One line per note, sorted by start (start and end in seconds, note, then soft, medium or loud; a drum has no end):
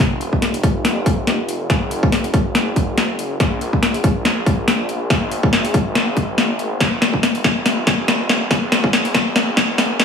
0.00 1.68 F1 medium
0.21 closed hi-hat medium
0.33 kick medium
0.42 snare soft
0.42 closed hi-hat medium
0.54 closed hi-hat medium
0.63 kick loud
0.63 closed hi-hat medium
0.85 snare soft
0.85 closed hi-hat medium
1.06 kick medium
1.06 closed hi-hat medium
1.27 snare soft
1.27 closed hi-hat medium
1.49 closed hi-hat medium
1.70 3.38 F#1 medium
1.70 kick loud
1.70 snare soft
1.70 closed hi-hat medium
1.91 closed hi-hat medium
2.03 kick loud
2.12 snare soft
2.12 closed hi-hat medium
2.24 closed hi-hat medium
2.34 kick loud
2.34 closed hi-hat medium
2.55 snare medium
2.55 closed hi-hat medium
2.76 kick medium
2.76 closed hi-hat medium
2.98 snare medium
2.98 closed hi-hat medium
3.19 closed hi-hat medium
3.40 5.08 A#1 medium
3.40 kick loud
3.40 snare medium
3.40 closed hi-hat medium
3.61 closed hi-hat medium
3.73 kick medium
3.83 snare medium
3.83 closed hi-hat medium
3.94 closed hi-hat medium
4.04 kick loud
4.04 closed hi-hat medium
4.25 snare medium
4.25 closed hi-hat medium
4.46 kick loud
4.46 closed hi-hat medium
4.68 snare medium
4.68 closed hi-hat medium
4.89 closed hi-hat medium
5.10 6.79 G#1 medium
5.10 kick loud
5.10 snare medium
5.10 closed hi-hat medium
5.31 closed hi-hat medium
5.43 kick loud
5.53 snare medium
5.53 closed hi-hat medium
5.65 closed hi-hat medium
5.74 kick loud
5.74 closed hi-hat medium
5.95 snare medium
5.95 closed hi-hat medium
6.17 kick medium
6.17 closed hi-hat medium
6.38 snare medium
6.38 closed hi-hat medium
6.59 closed hi-hat medium
6.80 8.49 F1 medium
6.80 kick loud
6.80 snare medium
6.80 closed hi-hat medium
7.02 snare medium
7.02 closed hi-hat medium
7.14 kick medium
7.23 snare medium
7.23 closed hi-hat medium
7.35 closed hi-hat medium
7.44 kick loud
7.44 snare medium
7.44 closed hi-hat medium
7.66 snare medium
7.66 closed hi-hat medium
7.87 kick loud
7.87 snare medium
7.87 closed hi-hat medium
8.08 snare medium
8.08 closed hi-hat medium
8.29 snare medium
8.29 closed hi-hat medium
8.51 10.05 F#1 medium
8.51 kick loud
8.51 snare medium
8.51 closed hi-hat medium
8.72 snare medium
8.72 closed hi-hat medium
8.84 kick loud
8.93 snare medium
8.93 closed hi-hat medium
9.05 closed hi-hat medium
9.14 kick loud
9.14 snare medium
9.14 closed hi-hat medium
9.36 snare medium
9.36 closed hi-hat medium
9.57 kick medium
9.57 snare medium
9.57 closed hi-hat medium
9.78 snare medium
9.78 closed hi-hat medium
10.00 snare medium
10.00 closed hi-hat medium